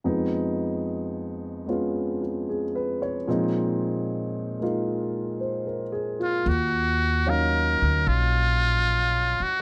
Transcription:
0.04 3.26 F2 soft
0.04 3.26 F3 soft
0.04 1.65 G#3 soft
0.04 1.66 B3 soft
0.04 3.27 D#4 soft
1.67 3.27 G#3 soft
1.67 3.27 B3 soft
1.67 3.28 C#4 soft
1.67 2.20 F4 soft
2.22 2.63 F4 soft
2.49 2.99 G#4 soft
2.75 3.16 B4 soft
3.02 3.43 C#5 soft
3.27 6.47 A#2 soft
3.27 6.47 F3 soft
3.27 4.58 G#3 soft
3.27 6.47 C4 soft
3.27 4.61 D#4 soft
4.59 6.46 G#3 soft
4.59 6.47 A#3 soft
4.59 6.47 D#4 soft
4.59 6.18 F4 soft
5.40 5.81 C5 soft
5.67 6.17 A#4 soft
5.92 6.34 G#4 soft
6.20 6.62 F4 soft
6.20 6.50 F4 medium
6.46 7.77 D#2 medium
6.46 7.31 F#4 medium
7.26 9.62 F#3 soft
7.26 9.62 C#4 soft
7.26 9.62 D#4 soft
7.26 8.10 A#4 medium
7.26 9.62 F5 soft
7.82 8.05 D2 medium
8.07 9.37 A#1 medium
8.07 9.44 F4 medium
9.40 9.62 F#4 medium
9.40 muted upright bass stroke soft

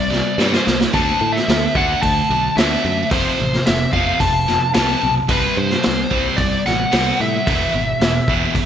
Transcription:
0.00 0.20 C2 medium
0.00 0.42 D5 medium
0.12 0.36 C3 medium
0.12 0.37 G3 medium
0.12 snare soft
0.38 0.57 G2 medium
0.38 0.64 C3 medium
0.38 0.64 G3 medium
0.38 0.65 C4 loud
0.38 0.79 C5 medium
0.38 snare medium
0.53 snare medium
0.66 0.85 C2 medium
0.66 0.91 C3 medium
0.66 0.91 G3 medium
0.66 snare medium
0.81 snare medium
0.93 1.12 D2 medium
0.93 1.19 D3 medium
0.93 1.20 A3 medium
0.93 1.20 D4 medium
0.93 1.36 A5 loud
0.93 kick loud
0.93 open hi-hat soft
1.21 1.39 A2 medium
1.21 1.45 D3 medium
1.21 1.46 A3 medium
1.32 1.76 E5 loud
1.32 snare soft
1.47 1.66 D2 loud
1.47 1.72 D3 medium
1.47 1.72 A3 medium
1.47 snare loud
1.47 open hi-hat medium
1.74 1.93 D2 medium
1.74 2.01 D3 medium
1.74 2.01 A3 loud
1.74 2.01 D4 loud
1.74 2.01 F#5 medium
1.74 kick medium
2.02 2.21 D2 medium
2.02 2.27 D3 medium
2.02 2.27 A3 medium
2.02 2.59 A5 loud
2.02 kick medium
2.02 open hi-hat medium
2.29 2.48 B1 medium
2.29 2.54 D3 medium
2.29 2.54 A3 medium
2.56 2.75 D2 medium
2.56 2.82 D3 medium
2.56 2.82 A3 loud
2.56 2.83 D4 medium
2.56 3.08 E5 medium
2.56 snare loud
2.56 open hi-hat medium
2.85 3.03 F#2 medium
2.85 3.09 D3 medium
2.85 3.09 A3 medium
3.11 3.29 F1 loud
3.11 3.37 F2 medium
3.11 3.38 C3 medium
3.11 3.38 F3 medium
3.11 3.68 C5 medium
3.11 kick loud
3.11 open hi-hat medium
3.38 3.58 A1 medium
3.38 3.63 F2 medium
3.38 3.63 C3 medium
3.53 snare soft
3.66 3.86 F1 loud
3.66 3.91 F2 medium
3.66 3.91 C3 medium
3.66 3.91 E5 medium
3.66 snare loud
3.66 open hi-hat medium
3.92 4.11 F1 medium
3.92 4.18 F2 medium
3.92 4.18 C3 loud
3.92 4.18 F3 loud
3.92 4.21 F5 medium
3.92 kick medium
4.20 4.57 F1 medium
4.20 4.45 F2 medium
4.20 4.45 C3 medium
4.20 4.71 A5 loud
4.20 kick medium
4.20 open hi-hat medium
4.46 4.71 F2 medium
4.46 4.72 C3 medium
4.46 snare soft
4.73 4.94 C2 medium
4.73 5.00 F2 medium
4.73 5.00 C3 medium
4.73 5.00 F3 loud
4.73 5.13 A5 loud
4.73 snare loud
4.73 open hi-hat medium
5.03 5.21 B1 medium
5.03 5.27 F2 medium
5.03 5.27 C3 medium
5.28 5.47 C2 medium
5.28 5.55 C3 medium
5.28 5.55 G3 medium
5.28 5.55 C4 medium
5.28 5.58 B4 loud
5.28 kick loud
5.28 open hi-hat medium
5.57 5.75 G2 medium
5.57 5.81 C3 medium
5.57 5.82 G3 medium
5.57 6.42 C5 medium
5.70 snare soft
5.83 6.04 C2 medium
5.83 6.09 C3 medium
5.83 6.09 G3 medium
5.83 snare loud
5.83 open hi-hat medium
6.11 6.29 C2 medium
6.11 6.37 C3 medium
6.11 6.37 G3 loud
6.11 6.38 C4 loud
6.11 kick medium
6.37 6.56 C2 medium
6.37 6.63 C3 medium
6.37 6.64 G3 medium
6.37 6.62 D5 loud
6.37 kick medium
6.37 open hi-hat soft
6.65 6.85 A1 medium
6.65 6.90 C3 medium
6.65 6.90 G3 medium
6.65 7.22 F#5 loud
6.65 snare soft
6.91 7.11 C2 medium
6.91 7.17 C3 medium
6.91 7.18 G3 medium
6.91 7.18 C4 medium
6.91 snare loud
6.91 open hi-hat medium
7.20 7.38 A2 medium
7.20 7.44 C3 medium
7.20 7.44 G3 medium
7.20 8.66 E5 medium
7.46 7.66 E1 medium
7.46 7.72 E2 medium
7.46 7.72 B2 medium
7.46 7.72 E3 medium
7.46 kick loud
7.46 open hi-hat soft
7.74 7.92 G#1 medium
7.74 7.99 E2 medium
7.74 7.99 B2 medium
8.00 8.19 E1 loud
8.00 8.25 E2 medium
8.00 8.26 B2 medium
8.00 snare loud
8.00 open hi-hat medium
8.28 8.46 E1 medium
8.28 8.54 E2 medium
8.28 8.54 B2 medium
8.28 8.54 E3 medium
8.28 kick medium
8.54 8.66 E1 medium
8.54 8.66 E2 medium
8.54 8.66 B2 medium
8.54 kick medium
8.54 open hi-hat medium

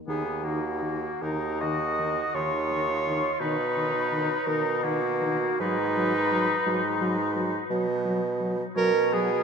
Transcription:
0.08 1.08 D#2 medium
0.08 0.24 D#3 soft
0.08 0.46 B3 medium
0.08 0.45 G#4 medium
0.08 0.45 G#5 medium
0.43 0.60 D#3 soft
0.43 1.24 A#3 soft
0.43 1.23 F#4 medium
0.43 1.24 F#5 soft
0.82 0.98 D#3 soft
1.22 2.22 D#2 medium
1.22 1.38 D#3 soft
1.22 1.63 D#4 medium
1.22 1.60 A#4 medium
1.22 1.62 A#5 medium
1.61 1.79 D#3 soft
1.61 2.37 F#4 medium
1.61 2.36 D#5 medium
1.61 2.36 D#6 medium
1.99 2.15 D#3 soft
2.34 3.28 D#2 medium
2.34 2.51 D#3 soft
2.34 3.42 F4 medium
2.34 3.40 C#5 medium
2.34 3.40 C#6 medium
2.71 2.87 D#3 soft
3.06 3.22 D#3 medium
3.40 4.35 B2 medium
3.40 3.57 D#3 medium
3.40 4.47 D#4 medium
3.40 4.48 B4 medium
3.40 4.48 B5 medium
3.77 3.93 D#3 medium
4.12 4.28 D#3 medium
4.46 5.47 B2 medium
4.46 4.63 D#3 medium
4.46 4.85 D#4 medium
4.46 4.83 A#4 medium
4.46 4.84 A#5 medium
4.83 5.00 D#3 medium
4.83 5.60 A#3 medium
4.83 5.59 F#4 medium
4.83 5.61 F#5 medium
5.22 5.38 D#3 medium
5.60 6.54 G#2 medium
5.60 5.76 F#3 medium
5.60 7.33 D#4 medium
5.60 7.33 B4 medium
5.60 7.36 B5 medium
5.97 6.13 F#3 medium
6.31 6.47 F#3 medium
6.67 7.59 G#2 medium
6.67 6.82 F#3 medium
7.01 7.17 F#3 medium
7.36 7.52 F#3 medium
7.71 8.64 B2 medium
7.71 7.86 F#3 medium
8.05 8.21 F#3 medium
8.40 8.56 F#3 medium
8.76 9.43 B2 medium
8.76 8.92 F#3 medium
8.76 9.15 C#4 medium
8.76 9.15 A#4 loud
8.76 9.15 A#5 medium
9.13 9.29 F#3 medium
9.13 9.43 B3 medium
9.13 9.43 G#4 medium
9.13 9.43 G#5 medium

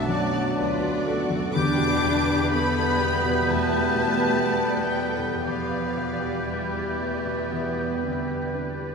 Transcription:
0.00 0.54 B1 medium
0.00 1.50 B1 medium
0.00 0.08 F#2 soft
0.00 1.52 B2 medium
0.00 1.39 F#3 medium
0.00 1.58 F#3 soft
0.00 1.03 A3 medium
0.00 1.06 B3 soft
0.00 1.23 B3 medium
0.00 1.39 D4 medium
0.00 0.33 F#4 soft
0.00 0.58 F#4 medium
0.00 0.57 D5 soft
0.00 0.57 D5 medium
0.00 1.22 D5 medium
0.00 1.06 A5 medium
0.00 1.22 F#6 medium
0.08 0.48 F#2 medium
0.08 0.57 D5 medium
0.33 0.72 F#4 medium
0.57 1.53 D2 medium
0.57 1.07 F4 medium
0.57 1.06 B4 medium
0.57 0.96 D5 medium
0.57 4.48 D5 medium
0.57 1.53 D5 medium
0.82 1.21 F#4 soft
1.06 1.44 B3 medium
1.06 1.58 F#4 medium
1.06 1.55 F#4 medium
1.06 1.55 A4 medium
1.30 1.54 F#2 medium
1.53 3.43 E2 medium
1.53 5.42 E2 medium
1.53 5.44 D3 medium
1.53 5.40 G3 medium
1.53 5.40 B3 medium
1.53 2.48 D4 loud
1.53 2.53 G4 medium
1.53 2.51 G4 medium
1.53 5.39 B4 medium
1.53 2.47 D6 loud
1.53 5.40 G6 medium
1.57 3.48 B4 medium
1.77 2.17 B2 medium
2.02 5.92 G3 medium
2.02 2.41 B3 medium
2.25 2.65 G4 medium
2.50 3.47 B3 medium
2.50 3.01 A4 medium
2.50 2.90 B4 medium
2.50 4.41 B4 medium
2.50 5.44 B4 medium
2.50 3.47 B5 loud
2.75 3.14 G4 soft
2.99 3.37 B3 medium
2.99 3.47 G4 medium
2.99 4.91 G4 medium
3.24 3.61 B2 medium
3.46 5.40 E2 medium
3.46 4.92 A3 medium
3.46 4.43 E4 medium
3.46 4.43 E5 medium
3.46 4.93 A5 loud
3.71 4.09 B3 soft
3.95 4.34 B2 soft
4.19 4.58 G4 soft
4.42 5.41 A4 medium
4.42 6.46 B4 soft
4.42 4.83 B4 soft
4.42 4.91 D5 medium
4.68 5.08 G4 soft
4.91 5.43 G3 medium
4.91 5.34 B3 soft
4.91 6.98 G4 soft
4.91 5.42 D5 medium
4.91 5.43 G5 medium
5.19 5.59 B2 soft
5.43 8.95 E2 soft
5.43 6.47 F3 medium
5.43 8.95 G3 medium
5.43 6.35 B3 soft
5.43 8.95 G4 medium
5.43 8.95 B4 medium
5.43 8.95 B4 soft
5.43 8.95 B4 medium
5.43 8.95 D5 medium
5.43 6.46 F5 medium
5.43 8.95 G6 soft
5.70 6.11 B3 soft
5.97 6.37 B2 soft
6.22 6.63 G4 soft
6.46 8.53 E3 soft
6.46 7.01 G3 soft
6.46 8.53 B4 soft
6.46 6.89 B4 soft
6.46 8.54 E5 medium
6.74 7.15 G4 soft
6.99 7.52 A3 soft
6.99 7.40 B3 soft
6.99 8.95 G4 soft
7.26 7.67 B2 soft
7.51 8.95 E2 soft
7.51 8.04 B3 medium
7.51 8.95 E4 soft
7.78 8.18 B3 soft
8.03 8.44 D3 soft
8.03 8.56 C4 medium
8.29 8.69 G4 soft
8.54 8.95 D4 soft
8.54 8.95 B4 soft
8.80 8.95 G4 soft

